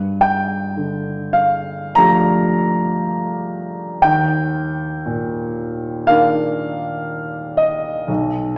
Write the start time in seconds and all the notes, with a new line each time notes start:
Already playing: G2
0.21 G5
0.77 D3
1.33 F5
1.95 F3 A3 D4 G4 A#5
4.02 D#2 G5
5.06 A#2
6.07 D#3 A#3 D4 A#4 F5
7.57 D#5
8.08 B1